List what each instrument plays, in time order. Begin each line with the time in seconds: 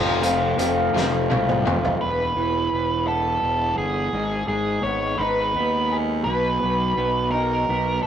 Already playing: fingered electric bass F1, distorted electric guitar F2 C3 F3, clean electric guitar F3 A3 C4 F4
0.22 distorted electric guitar F2 C3, clean electric guitar F3 A3 C4 F4, closed hi-hat
0.58 fingered electric bass F1, distorted electric guitar F2 C3, clean electric guitar F3 A3 C4 F4, closed hi-hat
0.93 fingered electric bass F1, distorted electric guitar F2 C3, clean electric guitar F3 A3 C4 F4, snare
1.29 fingered electric bass C2, distorted electric guitar F2 C3, clean electric guitar F3 A3 C4 F4, high tom
1.49 mid tom
1.65 fingered electric bass F1, distorted electric guitar F2 C3, clean electric guitar F3 A3 C4 F4, mid tom
1.85 floor tom
2.01 fingered electric bass E1, clean electric guitar E2, lead electric guitar B4
2.36 fingered electric bass E1, clean electric guitar E3
2.72 fingered electric bass E1
3.08 clean electric guitar B3, lead electric guitar A4
3.43 fingered electric bass E1
3.78 fingered electric bass G1, lead electric guitar G#4
4.12 fingered electric bass G#1, clean electric guitar G#2
4.48 fingered electric bass G#1, clean electric guitar G#3, lead electric guitar G#4
4.83 fingered electric bass G#1, clean electric guitar B3, lead electric guitar C#5
5.18 fingered electric bass G#1, clean electric guitar D#4, lead electric guitar B4
5.54 fingered electric bass D#2, clean electric guitar B3
5.92 clean electric guitar G#4
6.24 fingered electric bass B1, clean electric guitar B2, lead electric guitar B4
6.63 fingered electric bass B1, clean electric guitar F#3
6.97 fingered electric bass B1, clean electric guitar B3
7.31 clean electric guitar D#4, lead electric guitar A#4
7.69 fingered electric bass B1, clean electric guitar B3
8.02 lead electric guitar A4